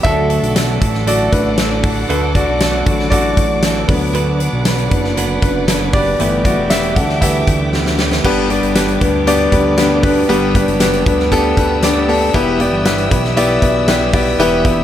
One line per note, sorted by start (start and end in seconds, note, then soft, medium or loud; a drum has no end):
0.03 0.40 D2 loud
0.03 0.77 D3 medium
0.03 0.30 D3 medium
0.03 0.77 F#3 medium
0.03 0.30 A3 medium
0.03 0.78 A3 medium
0.03 0.31 D4 medium
0.03 0.30 F#4 medium
0.03 1.03 A4 medium
0.03 3.85 A4 medium
0.03 0.29 A4 medium
0.03 3.85 D5 medium
0.03 1.09 E5 loud
0.03 3.86 F#5 medium
0.03 6.16 D6 medium
0.03 kick loud
0.03 closed hi-hat medium
0.30 0.55 D4 soft
0.30 0.56 F#4 medium
0.30 0.56 A4 medium
0.30 closed hi-hat medium
0.43 0.79 B1 medium
0.43 closed hi-hat medium
0.55 0.81 A3 medium
0.55 0.81 D4 medium
0.55 0.81 F#4 medium
0.55 0.79 A4 medium
0.55 snare loud
0.55 closed hi-hat loud
0.81 1.29 A1 medium
0.81 1.06 D4 soft
0.81 1.07 F#4 medium
0.81 1.07 A4 medium
0.81 kick loud
0.81 closed hi-hat medium
0.94 snare soft
1.07 2.08 D3 medium
1.07 1.57 A3 medium
1.07 1.58 D4 medium
1.07 1.13 F#4 medium
1.07 1.59 F#4 medium
1.07 1.59 A4 medium
1.07 1.13 D5 medium
1.07 closed hi-hat loud
1.32 2.06 A1 medium
1.32 2.06 D4 medium
1.32 2.08 B4 medium
1.32 kick medium
1.32 closed hi-hat medium
1.58 1.84 A3 medium
1.58 1.84 D4 medium
1.58 1.84 F#4 medium
1.58 1.82 A4 medium
1.58 snare loud
1.58 closed hi-hat medium
1.83 2.08 D4 soft
1.83 2.09 F#4 soft
1.83 2.09 A4 medium
1.83 kick loud
1.83 open hi-hat medium
2.09 2.45 D2 loud
2.09 2.35 D3 medium
2.09 2.35 A3 medium
2.09 2.35 D4 medium
2.09 2.34 D4 medium
2.09 2.35 F#4 medium
2.09 2.33 A4 loud
2.09 2.36 B4 medium
2.09 closed hi-hat medium
2.35 2.60 D4 medium
2.35 2.83 F#4 medium
2.35 2.61 F#4 medium
2.35 2.60 A4 medium
2.35 2.83 D5 medium
2.35 kick medium
2.35 closed hi-hat medium
2.48 2.84 B1 medium
2.60 2.86 A3 medium
2.60 2.87 D4 medium
2.60 2.86 F#4 medium
2.60 2.85 A4 medium
2.60 snare loud
2.60 closed hi-hat medium
2.86 3.34 A1 loud
2.86 3.85 D3 soft
2.86 3.85 F#3 soft
2.86 3.85 A3 medium
2.86 3.12 D4 soft
2.86 3.12 F#4 medium
2.86 3.12 A4 medium
2.86 kick loud
2.86 closed hi-hat medium
2.99 snare soft
3.10 4.13 D3 medium
3.10 3.62 A3 medium
3.10 3.64 D4 medium
3.10 3.60 F#4 medium
3.10 3.65 F#4 medium
3.10 3.64 A4 medium
3.10 3.59 D5 loud
3.10 kick medium
3.10 closed hi-hat loud
3.37 3.85 A1 medium
3.37 kick medium
3.37 closed hi-hat medium
3.63 3.89 A3 medium
3.63 3.88 D4 medium
3.63 3.89 F#4 medium
3.63 3.87 A4 medium
3.63 snare loud
3.63 closed hi-hat medium
3.88 4.49 D2 loud
3.88 4.62 D3 medium
3.88 4.62 F#3 medium
3.88 4.62 B3 medium
3.88 4.13 B3 soft
3.88 4.14 D4 medium
3.88 4.14 B4 medium
3.88 8.20 B4 medium
3.88 6.17 D5 medium
3.88 6.17 F#5 medium
3.88 kick loud
3.88 open hi-hat medium
4.14 4.40 D3 medium
4.14 4.40 F#3 medium
4.14 4.40 B3 loud
4.14 4.39 D4 medium
4.14 4.38 B4 loud
4.14 closed hi-hat medium
4.39 4.65 B3 medium
4.39 4.66 D4 medium
4.39 4.65 B4 medium
4.39 closed hi-hat medium
4.53 4.89 B1 loud
4.65 5.16 F#3 medium
4.65 5.17 B3 medium
4.65 5.18 D4 medium
4.65 5.18 B4 medium
4.65 snare loud
4.65 closed hi-hat loud
4.78 closed hi-hat soft
4.90 5.39 F#1 loud
4.90 5.39 D4 medium
4.90 5.40 B4 medium
4.90 kick loud
4.90 closed hi-hat medium
5.04 snare soft
5.17 6.20 D3 medium
5.17 5.66 F#3 medium
5.17 5.68 B3 medium
5.17 5.69 D4 loud
5.17 5.70 B4 medium
5.17 closed hi-hat loud
5.42 6.16 F#1 medium
5.42 5.91 D4 medium
5.42 5.95 B4 medium
5.42 kick medium
5.42 closed hi-hat medium
5.67 5.93 F#3 medium
5.67 5.94 B3 medium
5.67 5.93 D4 medium
5.67 5.92 B4 medium
5.67 snare loud
5.67 closed hi-hat medium
5.93 6.19 B3 soft
5.93 6.20 D4 medium
5.93 6.42 G4 medium
5.93 6.19 B4 medium
5.93 6.43 D5 loud
5.93 kick loud
5.93 open hi-hat medium
6.19 6.56 G1 loud
6.19 6.45 G2 medium
6.19 6.45 D3 loud
6.19 6.53 E3 medium
6.19 6.46 G3 loud
6.19 6.54 A3 medium
6.19 6.54 B3 medium
6.19 6.46 B3 loud
6.19 6.45 E4 medium
6.19 6.44 G4 medium
6.19 8.23 E5 medium
6.19 8.22 G5 medium
6.19 8.23 D6 medium
6.19 closed hi-hat medium
6.45 6.69 G3 medium
6.45 6.71 B3 medium
6.45 6.71 E4 medium
6.45 6.69 F#4 medium
6.45 6.71 G4 medium
6.45 6.71 D5 medium
6.45 kick medium
6.45 closed hi-hat medium
6.58 6.98 E1 medium
6.70 6.96 G3 medium
6.70 6.97 B3 medium
6.70 6.96 E4 medium
6.70 6.95 G4 medium
6.70 6.97 E5 loud
6.70 snare loud
6.70 closed hi-hat loud
6.83 closed hi-hat soft
6.95 7.44 D2 medium
6.95 7.21 G3 soft
6.95 7.22 B3 soft
6.95 7.22 E4 soft
6.95 7.22 G4 medium
6.95 7.20 A4 medium
6.95 7.22 F#5 medium
6.95 kick loud
6.95 closed hi-hat medium
7.09 snare soft
7.21 7.73 G2 medium
7.21 7.78 D3 medium
7.21 7.45 E3 soft
7.21 7.72 G3 medium
7.21 7.45 A3 soft
7.21 7.45 B3 medium
7.21 7.74 B3 medium
7.21 7.73 E4 medium
7.21 7.95 G4 medium
7.21 7.75 G4 medium
7.21 7.94 E5 medium
7.21 kick medium
7.21 closed hi-hat loud
7.47 8.21 D2 medium
7.47 kick medium
7.47 closed hi-hat medium
7.73 7.99 G3 medium
7.73 7.99 B3 medium
7.73 7.98 E4 medium
7.73 7.97 G4 medium
7.73 snare medium
7.86 snare medium
7.98 8.23 G3 soft
7.98 8.24 B3 soft
7.98 8.25 E4 soft
7.98 8.24 G4 medium
7.98 snare loud
8.12 snare medium
8.24 8.60 G1 loud
8.24 8.50 G2 medium
8.24 8.97 G2 medium
8.24 8.50 D3 medium
8.24 8.50 G3 medium
8.24 8.48 B3 loud
8.24 8.50 B3 loud
8.24 8.48 D4 loud
8.24 8.49 D4 medium
8.24 8.48 G4 loud
8.24 14.84 B4 medium
8.24 8.48 B4 loud
8.24 12.30 D5 medium
8.24 14.84 G5 medium
8.24 10.27 D6 medium
8.24 kick loud
8.24 crash medium
8.49 8.74 G3 medium
8.49 8.73 B3 medium
8.49 8.75 B3 medium
8.49 8.73 D4 medium
8.49 8.76 D4 medium
8.49 8.75 G4 medium
8.49 8.73 G4 medium
8.49 8.73 D5 medium
8.49 closed hi-hat medium
8.63 8.99 G1 medium
8.63 closed hi-hat medium
8.75 9.01 G3 medium
8.75 8.98 B3 medium
8.75 9.01 B3 medium
8.75 8.98 D4 medium
8.75 9.00 D4 medium
8.75 8.99 G4 medium
8.75 8.99 B4 medium
8.75 snare loud
8.75 closed hi-hat loud
8.88 closed hi-hat soft
9.00 9.49 D2 medium
9.00 9.26 G3 soft
9.00 9.24 B3 medium
9.00 9.26 B3 medium
9.00 9.24 D4 medium
9.00 9.27 D4 medium
9.00 9.26 G4 medium
9.00 9.24 G4 medium
9.00 9.24 B4 medium
9.00 kick loud
9.00 closed hi-hat medium
9.26 9.78 G2 medium
9.26 9.78 D3 medium
9.26 9.77 G3 medium
9.26 9.50 B3 loud
9.26 9.78 B3 medium
9.26 9.50 D4 medium
9.26 9.78 D4 medium
9.26 9.50 G4 loud
9.26 9.80 G4 medium
9.26 9.50 D5 loud
9.26 closed hi-hat loud
9.52 10.25 D2 medium
9.52 9.76 B3 medium
9.52 9.76 D4 medium
9.52 9.76 G4 medium
9.52 9.76 B4 loud
9.52 kick medium
9.52 closed hi-hat medium
9.77 10.30 G3 medium
9.77 10.01 B3 medium
9.77 10.30 B3 medium
9.77 10.01 D4 medium
9.77 10.30 D4 medium
9.77 10.01 G4 medium
9.77 10.31 G4 medium
9.77 10.01 B4 loud
9.77 snare loud
9.77 closed hi-hat loud
10.03 10.26 B3 medium
10.03 10.27 D4 medium
10.03 10.26 G4 medium
10.03 10.27 B4 loud
10.03 kick loud
10.03 open hi-hat medium
10.28 10.65 G1 loud
10.28 10.55 G2 medium
10.28 10.55 D3 medium
10.28 11.02 G3 medium
10.28 10.56 G3 loud
10.28 10.52 B3 loud
10.28 10.56 B3 loud
10.28 10.52 D4 loud
10.28 10.55 D4 loud
10.28 10.52 G4 loud
10.28 10.53 G4 loud
10.28 10.52 B4 loud
10.28 14.84 E6 medium
10.28 closed hi-hat medium
10.55 10.78 G3 medium
10.55 10.78 B3 medium
10.55 10.80 B3 medium
10.55 10.78 D4 medium
10.55 10.80 D4 medium
10.55 10.80 G4 medium
10.55 10.78 G4 medium
10.55 10.79 B4 loud
10.55 kick medium
10.55 closed hi-hat medium
10.68 11.04 F#1 medium
10.68 closed hi-hat medium
10.80 11.06 G3 medium
10.80 11.04 B3 medium
10.80 11.06 B3 medium
10.80 11.04 D4 medium
10.80 11.06 D4 medium
10.80 11.04 G4 medium
10.80 11.04 B4 loud
10.80 snare loud
10.80 closed hi-hat loud
10.93 closed hi-hat medium
11.06 11.54 D2 loud
11.06 11.31 G3 soft
11.06 11.29 B3 medium
11.06 11.31 B3 medium
11.06 11.30 D4 medium
11.06 11.32 D4 medium
11.06 11.32 G4 medium
11.06 11.30 G4 medium
11.06 11.30 B4 medium
11.06 kick loud
11.06 closed hi-hat medium
11.19 snare soft
11.31 11.83 G2 medium
11.31 11.83 D3 loud
11.31 11.82 G3 medium
11.31 11.55 B3 loud
11.31 11.83 B3 loud
11.31 11.55 D4 loud
11.31 11.83 D4 loud
11.31 11.55 G4 loud
11.31 11.85 G4 loud
11.31 11.55 A4 loud
11.31 kick medium
11.31 closed hi-hat loud
11.57 12.30 D2 medium
11.57 11.80 B3 medium
11.57 11.81 D4 medium
11.57 11.81 G4 medium
11.57 11.81 B4 medium
11.57 kick medium
11.57 closed hi-hat medium
11.83 12.34 G3 medium
11.83 12.06 B3 medium
11.83 12.35 B3 medium
11.83 12.06 D4 medium
11.83 12.35 D4 medium
11.83 12.06 G4 medium
11.83 12.35 G4 medium
11.83 12.06 D5 loud
11.83 snare loud
11.83 closed hi-hat loud
12.08 12.32 B3 medium
12.08 12.32 D4 medium
12.08 12.32 G4 medium
12.08 12.32 A4 loud
12.08 open hi-hat medium
12.34 12.70 E1 loud
12.34 12.60 E3 medium
12.34 13.07 E3 medium
12.34 12.60 G3 medium
12.34 12.57 B3 loud
12.34 12.60 B3 medium
12.34 12.58 E4 loud
12.34 12.60 E4 loud
12.34 12.58 G4 loud
12.34 12.58 B4 loud
12.34 14.84 E5 medium
12.34 kick loud
12.34 closed hi-hat medium
12.59 12.83 B3 medium
12.59 12.85 B3 medium
12.59 12.83 E4 medium
12.59 12.86 E4 medium
12.59 12.85 G4 medium
12.59 12.83 G4 medium
12.59 12.83 D5 medium
12.59 closed hi-hat medium
12.73 13.09 G1 medium
12.85 13.11 G3 medium
12.85 13.09 B3 medium
12.85 13.12 B3 medium
12.85 13.09 E4 medium
12.85 13.11 E4 medium
12.85 13.09 G4 medium
12.85 13.09 B4 loud
12.85 snare loud
12.85 closed hi-hat loud
12.98 closed hi-hat medium
13.10 13.59 B1 loud
13.10 13.34 B3 medium
13.10 13.36 B3 medium
13.10 13.34 E4 medium
13.10 13.36 E4 medium
13.10 13.37 G4 medium
13.10 13.34 G4 medium
13.10 13.34 B4 medium
13.10 kick loud
13.10 closed hi-hat medium
13.24 snare soft
13.36 13.88 E3 loud
13.36 13.86 G3 medium
13.36 13.60 B3 loud
13.36 13.87 B3 medium
13.36 13.60 E4 loud
13.36 13.88 E4 loud
13.36 13.60 G4 loud
13.36 13.89 G4 medium
13.36 13.60 D5 loud
13.36 closed hi-hat loud
13.62 14.35 B1 medium
13.62 13.86 B3 medium
13.62 13.86 E4 medium
13.62 13.86 G4 medium
13.62 13.86 B4 loud
13.62 kick medium
13.62 closed hi-hat medium
13.87 14.38 G3 medium
13.87 14.11 B3 loud
13.87 14.38 B3 medium
13.87 14.11 E4 medium
13.87 14.39 E4 medium
13.87 14.11 G4 medium
13.87 14.39 G4 medium
13.87 14.11 B4 loud
13.87 snare loud
13.87 closed hi-hat loud
14.13 14.37 B3 medium
14.13 14.37 E4 medium
14.13 14.37 G4 medium
14.13 14.37 D5 loud
14.13 kick loud
14.13 open hi-hat medium
14.38 14.75 E1 loud
14.38 14.65 E3 medium
14.38 14.84 E3 medium
14.38 14.65 G3 loud
14.38 14.65 B3 loud
14.38 14.63 B3 loud
14.38 14.63 E4 loud
14.38 14.64 E4 loud
14.38 14.63 G4 loud
14.38 14.63 B4 loud
14.38 closed hi-hat medium
14.64 14.84 B3 medium
14.64 14.84 E4 medium
14.64 14.84 G4 medium
14.64 14.84 B4 loud
14.64 kick loud
14.64 closed hi-hat medium
14.78 14.84 E1 medium